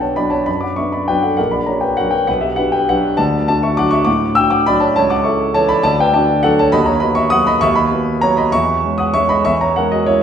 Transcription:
grand piano
Already playing: B1 B3 D4 B4 F#5 G5
0.01 C#5 A5
0.16 F#3 B3 D4 D5 B5
0.30 C#5 A5
0.46 F#2 D5 B5
0.61 F#5 D6
0.76 B3 D4 E5 C#6
0.92 D5 B5
1.08 F#3 B3 D4 B4 G5
1.23 A4 F#5
1.37 A#1 A#4 F#5
1.51 D5 B5
1.66 C#4 F#4 C#5 A#5
1.81 B4 G5
1.97 F#3 C#4 F#4 A#4 F#5
2.11 B4 G5
2.27 B1 B4 F#5
2.41 G4 E5
2.56 D4 F#4 B4 F#5
2.72 B4 G5
2.89 F#3 D4 F#4 B4 F#5
3.17 D2 D5 A5
3.48 D4 F#4 D5 A5
3.63 E5 C#6
3.77 F#3 D4 F#4 F#5 D6
3.91 E5 C#6
4.05 A2 F#5 D6
4.35 D4 F#4 G5 E6
4.50 F#5 D6
4.66 F#3 D4 F#4 D5 B5
4.80 C#5 A5
4.96 C#2 C#5 A5
5.10 F#5 D6
5.24 E4 A4 E5 C#6
5.54 E3 E4 A4 C#5 A5
5.69 D5 B5
5.83 D2 D5 A5
6.00 B4 G5
6.14 D4 F#4 D5 A5
6.43 F#3 D4 F#4 A4 F#5
6.59 C#5 A5
6.72 D#2 D#5 B5
6.86 C#5 A#5
7.00 B3 F#4 D#5 B5
7.15 E5 C#6
7.30 F#3 B3 F#4 F#5 D#6
7.47 D#5 B5
7.61 D#2 E5 C#6
7.76 D#5 B5
7.91 B3 F#4
8.21 F#3 B3 F#4 C#5 A#5
8.37 D#5 B5
8.52 E2 E5 C#6
8.84 G#3 C#4
8.98 F#5 D#6
9.14 G#3 C#4 E5 C#6
9.29 D#5 B5
9.45 E2 E5 C#6
9.61 C#5 A#5
9.76 G#3 C#4 A#4 F#5
9.92 F#4 D#5
10.06 G#3 C#4 E4 C#5

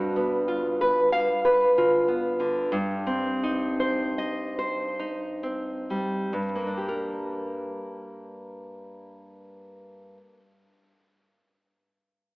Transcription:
nylon-string guitar
Already playing: G2
0.16 B3
0.48 F4
0.81 B4
1.12 F5
1.45 B4
1.78 F4
2.08 B3
2.40 D3
2.72 G2
3.07 C4
3.43 D#4
3.80 C5
4.18 D#5
4.59 C5
5.00 D#4
5.43 C4
5.90 G3
6.33 G2
6.55 A#3
6.67 D4
6.77 G4
6.88 A#4

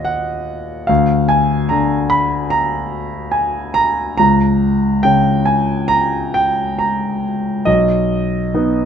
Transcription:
grand piano
Already playing: D#2 A#2 D#5 F5
0.05 F#5
0.87 D2 F5
1.29 G#5
1.69 D3 A#5
2.10 B5
2.50 A#5
3.32 G#5
3.74 A#5
4.18 C#2 A#5
5.03 C#3 G5
5.46 G#5
5.88 A#5
6.34 G5
6.79 A#5
7.65 B1 D#5
8.55 B3 D#4

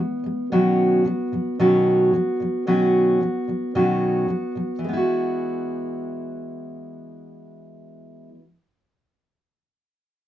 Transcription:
steel-string acoustic guitar
Already playing: E3 B3
0.00 G#3
0.24 E3 G#3
0.52 B2 D#3 F#3 B3 C#4 F#4
1.05 B2 D#3 F#3
1.32 B2 D#3 F#3
1.59 B2 D#3 F#3 B3 C#4 F#4
2.13 B2 D#3 F#3
2.40 B2 D#3 F#3
2.67 B2 D#3 F#3 B3 C#4 F#4
3.21 B2 D#3 F#3
3.48 B2 D#3 F#3
3.75 B2 D#3 F#3 B3 C#4 F#4
4.28 B2 D#3 F#3
4.55 B2 D#3 F#3
4.79 E3
4.84 G#3
4.89 B3
4.93 E4 F#4

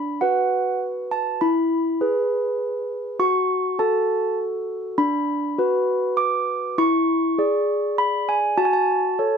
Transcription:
handbells
Already playing: D4 B5
0.21 F#4 B4 F#5
1.11 A5
1.41 E4 B5
2.01 G#4 B4
3.19 F#4 C#6
3.79 F#4 A4 A5
4.98 D4 B5
5.58 F#4 B4
6.17 D6
6.78 E4 C#6
7.38 G#4 D5
7.98 B5
8.29 G#5
8.57 F#4 A5
8.65 G#5
8.73 A5
9.19 A4 C#5

